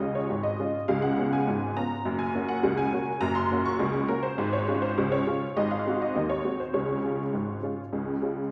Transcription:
honky-tonk piano
Already playing: C#2 C#3 D#5
0.00 G#3 C#4 F4
0.15 C#5
0.30 G#1 G#2
0.43 D#5
0.59 G#3 C#4 F4
0.88 C#2 C#3 F5
1.02 F#5
1.17 B3 C#4 F4
1.33 G#5
1.48 G#1 G#2
1.77 B3 C#4 F4 A#5
2.05 F#1 F#2
2.19 G#5
2.35 A#3 C#4 F#4
2.48 F#5
2.63 C#2 C#3
2.77 G#5
2.93 A#3 C#4 F#4
3.21 F#1 F#2 A#5
3.35 C6
3.51 A#3 C#4 F#4
3.65 C#6
3.79 C#2 C#3
4.08 A#3 C#4 F#4 A#4
4.23 C5
4.38 G#1 G#2
4.53 C#5
4.68 G#3 C#4 F4
4.82 C5
4.97 C#2 C#3
5.12 C#5
5.27 G#3 C#4 F4
5.57 G#1 G#2 D#5
5.71 F5
5.87 G#3 C4 F#4
6.02 D#5
6.16 D#2 D#3
6.29 C#5
6.44 G#3 C4 F#4
6.60 C5
6.74 C#2 C#3 C#5
7.04 G#3 C#4 F4
7.33 G#1 G#2
7.63 G#3 C#4 F4
7.93 C#2 C#3
8.22 G#3 C#4 F4

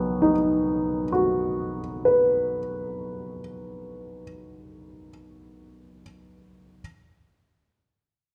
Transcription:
grand piano
Already playing: B1 F#2 B2 D#3 F#3 B3 D#6
0.22 D#4
1.12 F#4
2.05 B4

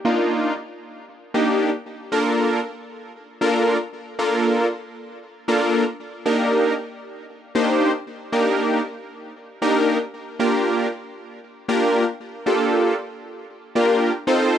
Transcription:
analog polysynth
0.05 A#3 D4 D#4 F4
1.34 A#3 D4 D#4 G4
2.12 A#3 D4 F4 A4 A#4
3.41 A#3 D4 F4 A4 A#4
4.19 A#3 D4 F4 A4 A#4
5.48 A#3 D4 F4 A4 A#4
6.26 A#3 D4 D#4 G4 A#4
7.55 A#3 D4 D#4 G4 C5
8.32 A#3 D4 D#4 G4 A#4
9.62 A#3 D4 D#4 G4 A#4
10.39 A#3 D4 F4 G4 A#4
11.68 A#3 D4 F4 G4 A#4
12.46 A#3 D4 F4 G4 A4
13.75 A#3 D4 F4 G4 A#4
14.27 C4 D#4 F4 A4 C5

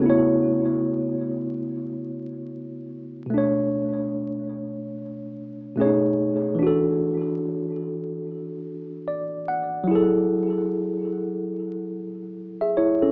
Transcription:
tine electric piano
Already playing: C#3 A3 F#4
0.02 B3 E4
0.10 C#5
3.26 B2 A3
3.34 D4 C#5
5.76 B2 A3 C#4
5.80 G#4 C#5
5.85 D#4
6.55 E3 D4
6.63 F#4 A4
9.08 D5
9.48 F#5
9.84 F#3 E4
9.91 G#4
9.95 A4
12.61 G#4 E5
12.77 E4 C#5
13.02 C#4 A4

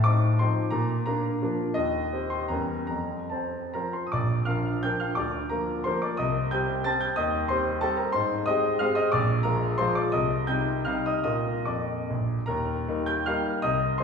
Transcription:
grand piano
Already playing: A2 A5
0.04 C4 D#4 D6
0.39 F3 C4 D#4 C6
0.71 A#2 A#5
1.06 A#3 D4 A#5
1.42 F3 A#3 D4
1.74 D#2 D#5
2.13 C4 G4
2.30 C6
2.48 E2 G3 C#4 A#4 A#5
2.87 F2 A#5
3.30 C4 C5 A5
3.74 F3 C4 A#4 C5 A#5
3.93 C6
4.07 D#6
4.12 A#1 D5 D6
4.45 F3 D4 A#4 F5 F6
4.83 F3 D4 A#4 G5 G6
5.00 F5 F6
5.15 D2 D5 D6
5.50 F3 A#3 A#4 A#5
5.84 F3 A#3 A#4 C5 C6
6.02 D5 D6
6.17 C2 D#5 D#6
6.51 G3 C4 G4 G5 G6
6.84 G3 C4 G4 A5 A6
7.01 G5 G6
7.16 D#2 D#5 D#6
7.48 G3 C4 G4 C5 C6
7.81 G3 C4 G4 A4 A5
7.97 A#4 A#5
8.12 G#2 C5 C6
8.46 G#3 C4 G4 D#5 D#6
8.79 G#3 C4 G4 F5 F6
8.95 D#5 D#6
9.12 A#1 D5 D6
9.43 F3 G#3 F4 A#4 A#5
9.78 F3 G#3 F4 C5 C6
9.95 D5 D6
10.12 C2 D#5 D#6
10.47 C3 G3 D#4 G5 G6
10.85 C3 G3 D#4 F5 F6
11.06 D#5 D#6
11.24 A#2 A#3 F4 D#5 D#6
11.65 F2 D5 D6
12.10 A#1
12.46 D#2 A#4 A#5
12.88 G3 A#3 D#4
13.06 G5 G6
13.26 G3 A#3 D#4 F5 F6
13.62 C2 D#5 D#6
13.98 D#3 G#3 D#4 C5 C6

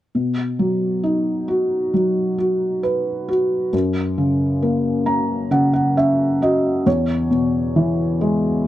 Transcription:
felt piano
0.15 B2
0.59 F#3
1.03 D#4
1.48 F#4
1.94 F#3
2.38 F#4
2.83 B4
3.28 F#4
3.73 F#2
4.18 C#3
4.62 A#3
5.06 C#4 A#5
5.51 C#3 F#5
5.73 F#5
5.97 C#4 E5
6.42 F#4 D#5
6.86 E2 C#5
7.31 B2
7.76 E3
8.21 G#3

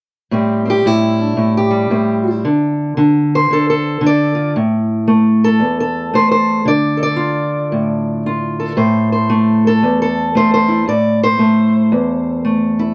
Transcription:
steel-string acoustic guitar
0.31 A2 G3 C4 G4
0.65 C4
0.70 G4
0.86 A2 E4
1.21 D4
1.37 A2
1.57 G4
1.71 G3
1.90 A2 C4
2.45 D3
2.97 D3
3.35 C5
3.51 D3 A4
3.70 A4
4.01 D3
4.06 D5
4.35 F4
4.56 A2
5.08 A3
5.44 A4
5.60 E2
5.80 A4
6.14 A3 C5
6.31 C5
6.65 D3 D5
6.97 A4
7.03 D5
7.16 F4
7.72 A2
8.26 F4
8.60 A4
8.77 A2 C5
9.12 C5
9.30 A3
9.67 A4
9.83 E2
10.02 A4
10.35 A3 C5
10.54 C5
10.68 E4
10.88 A2 D5
11.23 C5
11.39 A3
11.92 E2
12.45 A3
12.79 E4

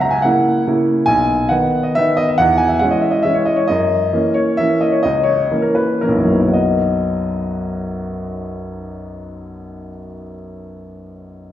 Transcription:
upright piano
Already playing: C#2 F#5
0.01 A#5
0.11 G#5
0.22 C#3 A#3 E4 F#5
0.67 C#3 A#3 E4
1.06 B1 G#5
1.49 D#3 B3 D#4 F#5
1.83 D#5
1.95 D#3 B3 D#4 E5
2.17 D#5
2.28 E5
2.38 E2 F#5
2.58 G#5
2.68 E5
2.79 E3 G#3 C#4 F#5
2.91 D#5
3.01 E5
3.11 D#5
3.23 E3 G#3 C#4 E5
3.34 C#5
3.45 D#5
3.56 C#5
3.68 F#2 D#5
4.13 E3 A#3 C#4
4.34 C#5
4.57 E3 A#3 C#4 E5
4.81 D#5
4.92 C#5
5.03 C#2 D#5
5.23 C#5
5.51 E3 A#3 C#4
5.62 A#4
5.75 B4
6.01 E3 A#3 C#4 A#4
6.09 B1
6.16 F#2
6.24 F#3
6.32 B3
6.40 D#4
6.48 F#4
6.53 D#5

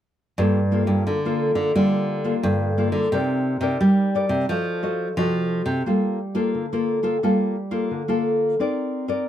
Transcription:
nylon-string guitar
0.38 G2 G3 A#3 F4 A4
0.72 A#3 F4 A4
0.87 G2
1.07 D3
1.25 A#3 F4 A4
1.55 D3
1.75 D3 G3 A#3 F4 A4
2.24 A#3 F4 A4
2.43 G2 D3
2.78 A#3 F4 A4
2.92 D3
3.12 C3 C4 D#4 A#4 D5
3.61 C3 D#4 A#4 D5
3.81 G3
4.15 D#4 A#4 D5
4.29 C3
4.49 F3 F#4 A4 D#5
4.83 F#4 A4 D#5
5.17 C3 F3 F#4 A4 D#5
5.66 C3
5.86 G3 A#3 F4 A4
6.35 A#3 F4 A4
6.55 D3
6.73 A#3 F4 A4
7.03 A#3 F4 A4
7.23 G3 A#3 F4 A4
7.71 A#3 F4 A4
7.91 D3
8.08 A#3 F4 A4
8.60 C4 D#4 A#4 D5
9.08 D#4 A#4 D5

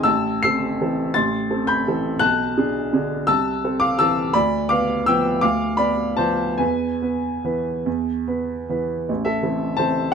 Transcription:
upright piano
0.03 A1 A5 E6
0.43 C4 A4 E6 C7
0.81 E3 C4 A4
1.14 A1 C6 A6
1.51 C4 A4
1.67 B5 G6
1.88 E3 C4 A4
2.19 B1 A5 F#6
2.58 D4 G#4
2.93 D3 D4 G#4
3.27 C2 A5 E6
3.64 C4 A4
3.80 F5 D6
3.99 E3 C4 A4 A5 E6
4.33 D2 D5 B5
4.69 B3 B4 F5 D6
5.06 F3 B3 B4 G5 E6
5.41 D2 F5 D6
5.77 B3 B4 D5 B5
6.17 F3 B3 B4 C5 A5
6.58 E2 B4 G#5
7.02 B3 B4
7.44 E3 B3 B4
7.86 E2
8.28 B3 B4
8.69 E3 B3 B4
9.09 A1
9.25 A4 E5
9.43 E3 C4 A4
9.77 E3 C4 A4 C5 A5

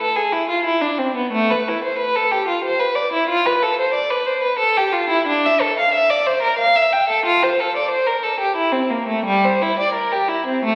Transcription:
violin
0.00 A4
0.16 G#4
0.32 E4
0.49 F4
0.64 E4
0.82 D4
0.98 C4
1.15 B3
1.32 A3
1.51 B4
1.68 E4
1.84 C5
1.98 B4
2.15 A4
2.32 G4
2.48 F4
2.64 C5
2.80 B4
2.95 D5
3.13 E4
3.29 F4
3.46 B4
3.62 A4
3.79 C5
3.94 D5
4.10 B4
4.26 C5
4.43 B4
4.59 A4
4.77 G4
4.93 F4
5.10 E4
5.27 D4
5.46 E5
5.61 A4
5.79 F5
5.94 E5
6.10 D5
6.27 C5
6.42 A#4
6.58 F5
6.76 E5
6.93 G5
7.09 A4
7.25 F4
7.43 C5
7.60 A4
7.77 D5
7.90 C5
8.07 A#4
8.23 A4
8.40 G4
8.56 E4
8.72 C4
8.90 A#3
9.08 A3
9.25 G3
9.44 C5
9.62 E4
9.79 D5
9.93 A#4
10.12 G4
10.28 E4
10.46 C4
10.64 A3

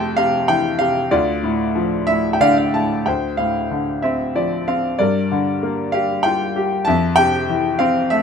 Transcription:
grand piano
Already playing: F2 C3 A3 G5 A5 C6
0.17 C3 F5
0.48 E3 G5
0.79 C3 F5
1.11 D2 F4 D5
1.43 A2
1.75 F3
2.07 A2 E5
2.33 G5
2.41 D3 D5 F5
2.58 F5
2.74 A2 A5
3.06 D2 C5 G5
3.37 A2 F5
3.71 D3
4.02 C4 E5
4.35 F3 D5
4.68 C4 F5
4.99 G2 A#4 D5
5.32 D3
5.63 A#3
5.92 G4 F5
6.23 F4 G5
6.56 G4
6.85 F2 E5 A5
7.16 C3 G5
7.49 E3
7.79 C4 F5
8.10 A3 E5

